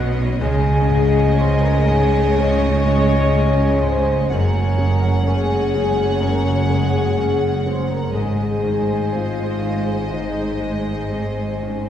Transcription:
Already playing: grand piano B1 F#2 B3 C#4, double bass section B1, cello section B2, harp B2 F#3 B3 C#4 D#4, viola section B3, violin section C#5 D#5, clarinet D#5, cor anglais F#5
0.40 grand piano C#2, double bass section C#2, harp C#3, cello section C#3, viola section G#3, french horn section G#4, violin section C#5 D#5, clarinet D#5, cor anglais G#5, flute section G#5
0.89 grand piano G#2, harp C#4
1.38 grand piano C#4, harp G#4, french horn section C5, flute section C6
1.61 french horn section A#4, flute section A#5
1.88 grand piano G#2, harp D#4, french horn section G#4, flute section G#5
2.38 grand piano C#2, harp G#3, french horn section C#5, clarinet D#5, cor anglais G#5, flute section C#6
2.86 grand piano G#3, harp C#4
3.34 grand piano C#4, harp G#4
3.82 grand piano G#2, harp D#4, french horn section C5, flute section C6
4.29 double bass section F#1, harp F#2, grand piano F#2, cello section F#2, viola section G#3, french horn section A#4, clarinet C#5, violin section C#5 F#5, cor anglais G#5, flute section A#5
4.78 grand piano C#3, harp G#3
5.24 grand piano C#4, harp F#4, french horn section G#4, clarinet C#5, flute section G#5, cor anglais G#5
5.74 grand piano C#3, harp C#4
6.20 grand piano F#2, harp C#3, french horn section A#4, clarinet C#5, cor anglais G#5, flute section A#5
6.69 grand piano G#3, harp G#3, french horn section G#4, flute section G#5
7.17 grand piano C#4, harp F#4
7.65 grand piano C#3, harp C#4, french horn section C5, flute section C6
7.90 french horn section A#4, flute section A#5
8.14 double bass section G#1, grand piano G#2, cello section G#2, harp G#2, viola section G#3, french horn section G#4, clarinet C5, violin section C5 D#5, cor anglais G#5, flute section G#5
8.64 grand piano D#3, harp G#3
9.13 grand piano C4, harp D#4, french horn section F4, flute section F5
9.62 grand piano D#3, harp C4
10.10 grand piano G#2, harp D#3, french horn section D#4, clarinet C5, flute section D#5, cor anglais G#5
10.61 grand piano G#3, harp G#3
11.11 grand piano C4, harp D#4
11.62 grand piano D#3, harp C4, french horn section C#4, flute section C#5

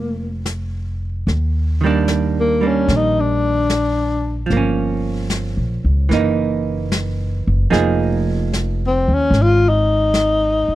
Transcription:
Already playing: upright bass F1, hollow-body jazz guitar F3 D4, tenor saxophone A#3
0.46 snare, hi-hat pedal
1.27 upright bass D#2, brush sweep, snare
1.81 hollow-body jazz guitar D#3 G3 A#3
1.86 hollow-body jazz guitar D4
2.08 snare, hi-hat pedal
2.40 tenor saxophone A#3
2.61 hollow-body jazz guitar G3 A#3 D4
2.67 tenor saxophone C#4
2.88 upright bass A#1, brush sweep, snare
2.96 tenor saxophone D#4
3.20 tenor saxophone D4
3.70 snare, hi-hat pedal
4.46 hollow-body jazz guitar F3
4.50 upright bass G1, hollow-body jazz guitar A#3, brush sweep, snare
4.57 hollow-body jazz guitar C#4
5.30 snare, hi-hat pedal
5.57 upright bass A#1
5.84 upright bass C#2
6.09 upright bass F#1, hollow-body jazz guitar E3 A#3, brush sweep, snare
6.13 hollow-body jazz guitar D#4
6.92 snare, hi-hat pedal
7.47 upright bass F#1
7.70 upright bass F1, hollow-body jazz guitar F3 A#3 D#4 G#4, brush sweep, snare
8.53 snare, hi-hat pedal
8.87 tenor saxophone C4
9.08 upright bass D#2
9.14 tenor saxophone C#4
9.31 upright bass G#1, brush sweep, snare
9.42 tenor saxophone F4
9.69 tenor saxophone D#4
10.14 snare, hi-hat pedal
10.68 muted upright bass stroke

